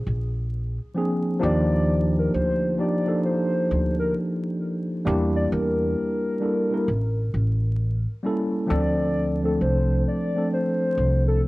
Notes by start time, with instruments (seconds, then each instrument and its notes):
Already playing: soft synth lead G#4
0.07 upright bass A#1
0.95 tine electric piano F3 A#3 C4 D4 G#4
1.40 upright bass D#2, tine electric piano F3 A#3 D4 D#4 G4
1.44 soft synth lead D5
2.19 soft synth lead A#4
2.34 upright bass D2, soft synth lead C5
2.77 tine electric piano F3 A#3 D4 D#4 G4, soft synth lead D5
3.05 tine electric piano F3 A#3 D4 D#4 A4
3.25 soft synth lead C5
3.71 upright bass D2
3.99 soft synth lead A#4
5.05 upright bass E2, tine electric piano G3 A#3 D4 E4 G4
5.36 soft synth lead D5
5.52 upright bass E2, soft synth lead A#4
6.40 tine electric piano G3 A#3 D4 E4 A4
6.71 tine electric piano G3 A#3 D4 E4 A#4
6.88 upright bass A1
7.34 upright bass A1
8.23 tine electric piano G3 A#3 C#4 E4 A4
8.67 upright bass D2, tine electric piano F3 A3 C4 D4 A4, soft synth lead D5
9.43 tine electric piano F3 A3 C4 D4 A4, soft synth lead A4
9.61 upright bass C2, soft synth lead C5
10.08 soft synth lead D5
10.35 tine electric piano F3 A3 C4 D4 A4
10.53 soft synth lead C5
10.98 upright bass C2
11.28 soft synth lead A4